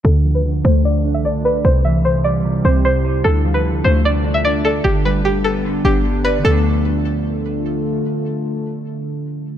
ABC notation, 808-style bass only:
X:1
M:4/4
L:1/16
Q:1/4=150
K:Ddor
V:1 name="808-style bass" clef=bass
D,,6 D,,4- D,, C,,4- C,, | C,,8- C,,2 C,,6 | D,,6 D,,8- D,,2 | G,,,8- G,,,2 G,,,6 |
D,,16 | z16 |]